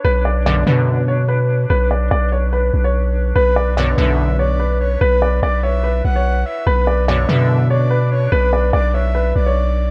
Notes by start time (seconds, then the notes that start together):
Already playing: D4 C#5
0.04 B1 B4
0.25 D5
0.46 F#2 B2 D3 D5
0.67 F#2 B2 D3 B4
1.08 C#5
1.28 B4
1.70 B1 B4
1.91 D5
2.11 B1 D5
2.32 C#5
2.53 B4
2.73 B1
2.84 C#5
3.36 B1 B4
3.56 D5
3.77 F#2 B2 D3 C#5 D5
3.98 B1 F#2 B2 D3 B4 E5
4.39 C#5 D5
4.60 B4
4.80 C#5
5.01 B1 B4
5.22 D5
5.42 B1 D5
5.63 C#5 E5
5.84 B4
6.05 B1 F#5
6.16 C#5
6.46 E5
6.67 B1 D4 B4
6.87 D5
7.08 F#2 B2 D3 C#5 D5
7.29 F#2 B2 D3 B4 E5
7.70 C#5 D5
7.91 B4
8.11 C#5
8.32 B1 B4
8.53 D5
8.73 B1 D5
8.94 C#5 E5
9.15 B4
9.36 B1 D5
9.46 C#5